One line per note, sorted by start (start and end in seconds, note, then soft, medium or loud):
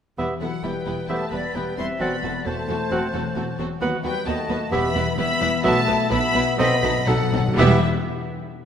0.18 0.26 E1 soft
0.18 0.26 E2 soft
0.18 1.99 E3 soft
0.18 0.26 G3 soft
0.18 0.34 B3 soft
0.18 0.26 B3 soft
0.18 0.27 E4 soft
0.18 0.34 G4 soft
0.18 0.27 B4 soft
0.18 0.34 E5 soft
0.41 0.49 E1 soft
0.41 0.49 E2 soft
0.41 0.62 F#3 soft
0.41 0.49 G3 soft
0.41 1.30 B3 soft
0.41 0.49 B3 soft
0.41 0.49 E4 soft
0.41 0.47 A4 soft
0.41 0.49 B4 soft
0.41 0.62 F#5 medium
0.63 0.72 E1 soft
0.63 0.72 E2 soft
0.63 1.09 G3 soft
0.63 0.72 G3 soft
0.63 0.71 B3 soft
0.63 0.72 E4 soft
0.63 1.54 G4 soft
0.63 1.09 B4 soft
0.63 0.72 B4 soft
0.63 1.09 G5 medium
0.86 0.95 E1 soft
0.86 0.95 E2 soft
0.86 0.95 G3 soft
0.86 0.95 B3 soft
0.86 1.76 E4 soft
0.86 0.94 E4 soft
0.86 0.94 B4 soft
1.08 1.17 E1 soft
1.08 1.18 E2 soft
1.08 2.02 G3 soft
1.08 1.18 G3 soft
1.08 1.32 A3 medium
1.08 1.17 B3 soft
1.08 1.26 B3 soft
1.08 1.17 E4 soft
1.08 1.25 G4 soft
1.08 1.17 B4 soft
1.08 1.16 C5 medium
1.08 1.25 E5 soft
1.08 1.32 A5 medium
1.31 1.40 E1 soft
1.31 1.41 E2 soft
1.31 1.40 G3 soft
1.31 2.02 B3 soft
1.31 1.40 B3 soft
1.31 1.55 B3 medium
1.31 1.41 E4 soft
1.31 1.41 B4 soft
1.31 1.57 D5 medium
1.31 1.55 B5 medium
1.55 1.64 E1 soft
1.55 1.64 E2 soft
1.55 1.77 G3 soft
1.55 1.63 G3 soft
1.55 1.63 B3 soft
1.55 1.64 E4 soft
1.55 2.02 G4 soft
1.55 1.77 B4 soft
1.55 1.64 B4 soft
1.55 1.78 G5 medium
1.77 1.86 E1 soft
1.77 1.86 E2 soft
1.77 1.86 G3 soft
1.77 1.86 B3 soft
1.77 2.00 C4 medium
1.77 3.83 E4 soft
1.77 1.87 E4 soft
1.77 1.87 B4 soft
1.77 2.03 E5 medium
1.77 1.85 C6 medium
1.99 2.09 E1 medium
1.99 2.09 E2 soft
1.99 2.90 E3 soft
1.99 2.09 F#3 soft
1.99 2.45 B3 medium
1.99 2.08 C4 medium
1.99 2.16 C4 soft
1.99 2.16 F#4 soft
1.99 2.08 F#4 soft
1.99 2.08 A4 soft
1.99 2.48 D5 medium
1.99 2.17 F#5 soft
1.99 2.44 B5 medium
2.23 2.32 E1 soft
2.23 2.31 E2 soft
2.23 2.31 F#3 soft
2.23 2.31 C4 soft
2.23 2.67 C4 soft
2.23 2.32 F#4 soft
2.23 2.32 A4 soft
2.45 2.54 E1 soft
2.45 2.54 E2 soft
2.45 2.54 F#3 soft
2.45 3.59 A3 medium
2.45 2.54 C4 soft
2.45 3.35 F#4 soft
2.45 2.55 F#4 soft
2.45 2.55 A4 soft
2.45 3.59 C5 medium
2.45 3.56 A5 medium
2.68 2.77 E1 soft
2.68 2.77 E2 medium
2.68 2.77 F#3 soft
2.68 3.58 C4 soft
2.68 2.77 C4 soft
2.68 2.77 F#4 soft
2.68 2.76 A4 soft
2.91 3.00 E1 medium
2.91 2.99 E2 soft
2.91 3.83 E3 soft
2.91 3.00 F#3 soft
2.91 3.07 C4 soft
2.91 3.00 C4 soft
2.91 2.99 F#4 soft
2.91 3.07 F#4 medium
2.91 2.99 A4 soft
2.91 3.07 F#5 soft
3.13 3.22 E1 medium
3.13 3.21 E2 soft
3.13 4.74 F#3 soft
3.13 3.22 F#3 soft
3.13 3.22 C4 soft
3.13 3.21 F#4 soft
3.13 3.21 A4 soft
3.36 3.45 E1 medium
3.36 3.44 E2 medium
3.36 3.44 F#3 soft
3.36 3.45 C4 soft
3.36 3.44 F#4 soft
3.36 4.25 F#4 soft
3.36 3.44 A4 soft
3.59 3.67 E1 soft
3.59 3.67 E2 medium
3.59 3.67 F#3 soft
3.59 3.84 C4 soft
3.59 3.68 C4 soft
3.59 3.67 F#4 soft
3.59 3.67 A4 soft
3.81 3.90 D#2 medium
3.81 4.74 D#3 medium
3.81 3.90 F#3 medium
3.81 3.97 B3 medium
3.81 3.90 B3 medium
3.81 3.89 F#4 medium
3.81 3.97 F#4 medium
3.81 3.89 B4 medium
3.81 3.97 F#5 medium
4.03 4.12 D#2 medium
4.03 4.12 F#3 soft
4.03 4.25 G3 medium
4.03 4.48 B3 soft
4.03 4.12 B3 soft
4.03 4.13 F#4 soft
4.03 4.25 B4 medium
4.03 4.13 B4 soft
4.03 4.25 G5 medium
4.25 4.35 D#2 medium
4.25 4.34 F#3 medium
4.25 4.72 A3 medium
4.25 4.34 B3 medium
4.25 4.74 F#4 medium
4.25 4.35 F#4 soft
4.25 4.35 B4 medium
4.25 4.73 D#5 medium
4.25 4.71 A5 medium
4.49 4.57 D#2 medium
4.49 4.58 D#2 medium
4.49 4.57 F#3 soft
4.49 4.94 B3 soft
4.49 4.57 B3 soft
4.49 4.57 F#4 medium
4.49 4.58 B4 medium
4.71 4.81 E1 medium
4.71 5.37 E2 medium
4.71 4.80 E2 medium
4.71 5.66 E3 medium
4.71 4.80 G3 medium
4.71 5.17 B3 medium
4.71 4.88 B3 medium
4.71 4.80 B3 medium
4.71 4.81 E4 medium
4.71 4.88 G4 medium
4.71 4.81 B4 medium
4.71 5.17 E5 medium
4.71 4.88 E5 medium
4.71 5.17 B5 medium
4.95 5.03 E1 medium
4.95 5.03 E2 medium
4.95 5.04 G3 medium
4.95 5.87 B3 medium
4.95 5.03 B3 medium
4.95 5.04 E4 medium
4.95 5.04 B4 medium
5.18 5.26 E1 medium
5.18 5.26 E2 medium
5.18 5.26 G3 medium
5.18 5.26 B3 medium
5.18 5.63 B3 medium
5.18 5.26 E4 medium
5.18 5.66 G4 medium
5.18 5.26 B4 medium
5.18 5.63 E5 medium
5.18 5.63 B5 loud
5.41 5.49 E1 medium
5.41 5.49 E2 medium
5.41 5.49 G3 medium
5.41 5.49 B3 medium
5.41 5.49 E4 medium
5.41 6.33 E4 medium
5.41 5.49 B4 medium
5.63 5.73 B1 medium
5.63 6.31 B2 medium
5.63 5.72 B2 medium
5.63 6.58 B2 medium
5.63 5.72 F#3 medium
5.63 6.11 A3 medium
5.63 5.72 B3 medium
5.63 5.81 B3 medium
5.63 5.72 E4 medium
5.63 5.80 F#4 medium
5.63 5.72 B4 medium
5.63 5.80 E5 medium
5.63 6.10 E5 medium
5.63 6.09 A5 loud
5.87 5.96 B1 medium
5.87 5.95 B2 medium
5.87 5.96 F#3 medium
5.87 5.96 B3 medium
5.87 7.57 B3 medium
5.87 5.95 E4 medium
5.87 5.95 B4 medium
6.10 6.19 B1 medium
6.10 6.19 B2 medium
6.10 6.18 F#3 medium
6.10 6.57 B3 medium
6.10 6.18 B3 medium
6.10 6.18 E4 medium
6.10 7.60 F#4 medium
6.10 6.18 B4 medium
6.10 6.58 E5 medium
6.10 6.57 B5 loud
6.34 6.43 B1 medium
6.34 6.42 B2 medium
6.34 6.42 F#3 medium
6.34 6.42 B3 medium
6.34 6.44 E4 medium
6.34 6.43 B4 medium
6.58 6.68 B1 medium
6.58 6.67 B2 medium
6.58 7.60 B2 medium
6.58 6.66 B2 soft
6.58 6.66 F#3 medium
6.58 7.07 B3 medium
6.58 6.66 C4 medium
6.58 6.76 C4 medium
6.58 6.67 D#4 medium
6.58 6.75 A4 medium
6.58 6.67 A4 medium
6.58 7.09 D#5 medium
6.58 6.76 D#5 medium
6.58 7.07 B5 loud
6.67 6.74 B2 soft
6.75 6.82 B2 soft
6.82 6.92 B1 medium
6.82 6.89 B2 soft
6.82 6.91 B2 medium
6.82 6.90 F#3 medium
6.82 7.60 A3 medium
6.82 6.90 C4 medium
6.82 6.92 D#4 medium
6.82 6.92 A4 medium
6.91 6.97 B2 soft
6.98 7.05 B2 medium
7.06 7.16 B1 medium
7.06 7.14 B2 medium
7.06 7.16 B2 medium
7.06 7.15 F#3 medium
7.06 7.57 F#3 medium
7.06 7.15 C4 medium
7.06 7.60 D#4 medium
7.06 7.16 D#4 medium
7.06 7.57 A4 medium
7.06 7.16 A4 medium
7.06 7.58 F#5 medium
7.15 7.22 B2 medium
7.23 7.30 B2 medium
7.32 7.42 B1 medium
7.32 7.38 B2 medium
7.32 7.41 B2 medium
7.32 7.41 F#3 medium
7.32 7.41 C4 medium
7.32 7.60 C4 medium
7.32 7.42 D#4 medium
7.32 7.42 A4 medium
7.40 7.47 B2 medium
7.48 7.56 B2 medium
7.52 7.86 E3 medium
7.52 7.86 G3 medium
7.58 7.86 E1 loud
7.58 7.85 E2 medium
7.58 7.81 E2 medium
7.58 7.85 G3 medium
7.58 7.85 B3 medium
7.58 7.86 B3 medium
7.58 7.79 B3 medium
7.58 7.79 E4 medium
7.58 7.86 E4 medium
7.58 7.85 G4 medium
7.58 7.79 G4 medium
7.58 7.85 E5 medium
7.58 7.79 E5 medium
7.64 7.86 B4 medium